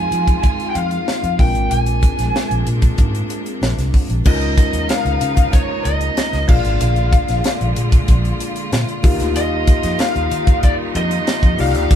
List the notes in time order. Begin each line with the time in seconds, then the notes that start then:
Already playing: D#3 F3 G#3 C4 D#4 F4 G#4 G#5
0.11 F3, closed hi-hat
0.28 kick, closed hi-hat
0.43 G#5, kick, closed hi-hat
0.60 closed hi-hat
0.70 G5
0.75 F2 F5, closed hi-hat
0.91 closed hi-hat
1.08 snare
1.23 F2, closed hi-hat
1.38 A#1 C3 G#3 A#3 C4 D4 F4 A#4 G5, kick, open hi-hat
1.55 G#1, closed hi-hat
1.71 A#1 G#5, closed hi-hat
1.86 closed hi-hat
2.03 kick, closed hi-hat
2.19 A#1, snare, closed hi-hat
2.36 snare
2.51 A#1, closed hi-hat
2.67 A#2, closed hi-hat
2.82 kick, closed hi-hat
2.98 G#2, kick, closed hi-hat
3.15 closed hi-hat
3.30 closed hi-hat
3.46 closed hi-hat
3.62 A#1, snare
3.77 C2, snare, closed hi-hat
3.94 kick, open hi-hat
4.09 A#1, closed hi-hat
4.25 C#2 C#3 F3 G#3 A#3 C#4 D#4 F4 A#4 D#5, kick, crash
4.41 closed hi-hat
4.58 kick, closed hi-hat
4.73 D#2, closed hi-hat
4.89 F5, snare, closed hi-hat
5.05 C#2, closed hi-hat
5.21 C#3, closed hi-hat
5.37 kick, closed hi-hat
5.53 C#5, kick, closed hi-hat
5.85 C#2 D#5, closed hi-hat
6.01 closed hi-hat
6.17 snare, closed hi-hat
6.33 C#2, snare, closed hi-hat
6.48 A#1 D3 G#3 A#3 D4 F4 G#4 D5 F5, kick, crash
6.65 G#1, closed hi-hat
6.81 A#1, closed hi-hat
6.96 closed hi-hat
7.13 kick, closed hi-hat
7.28 A#1, snare, closed hi-hat
7.44 snare, closed hi-hat
7.61 A#1, closed hi-hat
7.76 A#2, closed hi-hat
7.92 kick, closed hi-hat
8.08 A#1, kick, closed hi-hat
8.25 closed hi-hat
8.40 closed hi-hat
8.56 closed hi-hat
8.72 A#2, snare, closed hi-hat
8.89 closed hi-hat
9.03 D#2 D#3 G3 A#3 D#4 F4 G4 F5, kick, open hi-hat
9.20 D2, snare, closed hi-hat
9.36 D#2 D#5, closed hi-hat
9.67 kick, closed hi-hat
9.83 F2, snare, closed hi-hat
9.99 F5, snare, closed hi-hat
10.16 D#2, closed hi-hat
10.31 D#3, closed hi-hat
10.47 kick, closed hi-hat
10.63 D5, kick, closed hi-hat
10.95 F2 D#5, closed hi-hat
11.11 closed hi-hat
11.27 snare, closed hi-hat
11.43 F2, kick, closed hi-hat
11.58 C2 A#3 D#4 F4 G4 D5 F5, open hi-hat
11.75 D2, snare, closed hi-hat
11.91 D#2, kick, closed hi-hat